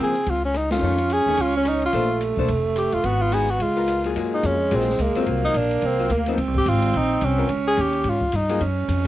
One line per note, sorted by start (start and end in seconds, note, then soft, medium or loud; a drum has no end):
0.00 0.25 C#3 medium
0.00 0.14 F3 medium
0.00 0.14 A#3 medium
0.00 0.51 C4 medium
0.00 0.14 C4 medium
0.00 0.32 G#4 medium
0.15 ride soft
0.26 0.79 C#2 medium
0.26 0.44 F4 medium
0.26 ride medium
0.45 0.58 C#4 medium
0.54 0.71 D#4 medium
0.54 cross-stick medium
0.54 hi-hat pedal soft
0.54 ride medium
0.71 0.81 D#3 medium
0.71 0.82 A3 soft
0.71 0.82 C#4 medium
0.71 1.14 F4 medium
0.71 snare medium
0.71 ride medium
0.76 0.84 C4 medium
0.82 1.23 F2 medium
0.82 0.97 D#3 medium
0.82 0.98 A3 medium
0.82 1.95 C#4 loud
0.82 0.98 C#4 medium
0.98 ride soft
1.10 1.43 G#4 medium
1.10 hi-hat pedal medium
1.10 ride medium
1.26 1.37 E2 medium
1.26 1.37 D#3 medium
1.26 1.37 A3 medium
1.26 1.38 C#4 medium
1.37 1.91 C#2 medium
1.37 ride medium
1.41 1.56 F4 medium
1.57 1.70 C#4 medium
1.65 1.84 D#4 medium
1.65 cross-stick medium
1.65 hi-hat pedal medium
1.65 ride medium
1.82 ride soft
1.86 2.20 F4 medium
1.93 2.34 A#1 medium
1.93 3.05 A3 medium
1.93 2.08 A#3 medium
1.93 2.08 D4 medium
1.93 2.09 A4 medium
1.93 2.09 C5 medium
1.93 ride medium
2.21 hi-hat pedal soft
2.21 ride medium
2.37 2.48 B1 medium
2.37 2.48 A#3 medium
2.37 2.48 D4 medium
2.37 2.49 A4 medium
2.37 2.49 C5 medium
2.37 kick medium
2.48 2.90 F1 medium
2.48 ride medium
2.76 2.95 G4 medium
2.76 cross-stick medium
2.76 hi-hat pedal medium
2.76 ride medium
2.92 3.03 F1 medium
2.92 3.08 F4 medium
2.92 ride soft
3.03 3.57 G#1 medium
3.03 3.60 B3 medium
3.03 3.23 F#4 medium
3.03 ride medium
3.22 3.35 F4 medium
3.32 3.47 G#3 medium
3.32 3.47 D#4 medium
3.32 3.48 F#4 medium
3.32 3.52 G#4 medium
3.32 3.48 B4 medium
3.32 hi-hat pedal medium
3.32 ride medium
3.48 3.64 F#4 medium
3.48 ride soft
3.60 4.13 C#2 medium
3.60 4.02 G#3 medium
3.60 4.11 F4 medium
3.60 ride medium
3.76 4.03 B3 medium
3.76 4.03 F4 medium
3.76 4.03 A#4 medium
3.88 cross-stick medium
3.88 hi-hat pedal medium
3.88 ride medium
4.04 4.15 F#3 soft
4.04 4.15 A#3 soft
4.04 4.15 F4 medium
4.04 4.16 G#4 medium
4.04 ride soft
4.15 4.42 F#2 medium
4.15 4.57 F#3 medium
4.15 5.28 G#3 medium
4.15 4.57 A#3 medium
4.15 4.57 F4 medium
4.15 4.58 G#4 medium
4.15 ride medium
4.34 4.48 D#4 medium
4.43 4.70 F2 medium
4.43 4.76 C#4 medium
4.43 hi-hat pedal medium
4.43 ride medium
4.71 4.98 A#1 medium
4.71 4.86 F#3 medium
4.71 4.87 A#3 medium
4.71 5.03 C4 medium
4.71 4.87 F4 medium
4.71 4.87 G#4 medium
4.71 ride medium
4.80 snare soft
4.89 snare soft
4.99 5.14 C#2 medium
4.99 5.28 A#3 medium
4.99 hi-hat pedal medium
4.99 ride medium
5.15 5.53 F#3 medium
5.15 5.53 C4 medium
5.15 5.53 F4 medium
5.15 muted upright bass stroke soft
5.15 ride soft
5.26 5.53 C2 medium
5.26 6.32 A#3 loud
5.26 ride medium
5.45 5.59 D#4 medium
5.54 5.81 A#1 medium
5.54 5.87 D4 medium
5.54 hi-hat pedal soft
5.54 ride medium
5.71 ride soft
5.82 6.09 C2 medium
5.82 6.14 C4 medium
5.82 ride medium
5.99 6.09 F#3 medium
5.99 6.10 C4 medium
5.99 6.10 F4 medium
6.10 6.37 D2 medium
6.10 6.39 A#3 medium
6.10 hi-hat pedal medium
6.10 ride medium
6.26 6.38 F3 medium
6.26 6.38 C4 medium
6.26 6.38 D#4 medium
6.26 ride soft
6.31 6.39 B3 medium
6.37 6.47 C#2 medium
6.37 7.51 C4 loud
6.37 ride medium
6.47 6.56 C2 medium
6.54 6.65 G#1 medium
6.54 6.70 G4 medium
6.54 kick medium
6.66 6.93 G#1 medium
6.66 6.99 F4 medium
6.66 hi-hat pedal medium
6.66 ride medium
6.82 ride soft
6.94 7.21 A#1 medium
6.94 7.26 D#4 medium
6.94 ride medium
7.21 7.49 C2 medium
7.21 7.51 C#4 medium
7.21 hi-hat pedal medium
7.21 ride medium
7.38 7.48 B3 medium
7.38 7.49 F4 medium
7.38 7.49 A#4 medium
7.49 7.76 C#2 medium
7.49 8.22 C#4 loud
7.49 ride medium
7.68 7.83 G#4 loud
7.77 8.04 D#2 medium
7.77 hi-hat pedal soft
7.77 ride medium
7.81 8.11 G4 medium
7.93 ride soft
8.04 8.32 G#2 medium
8.04 ride medium
8.09 8.37 F4 medium
8.21 kick medium
8.32 8.60 G2 medium
8.32 8.62 D#4 medium
8.32 hi-hat pedal medium
8.32 ride medium
8.49 8.60 F#3 medium
8.49 8.60 A#3 medium
8.49 8.60 F4 medium
8.49 8.60 G#4 medium
8.49 ride soft
8.61 8.88 F#2 medium
8.61 9.07 C#4 loud
8.61 ride medium
8.88 9.07 F2 medium
8.88 hi-hat pedal medium
8.88 ride medium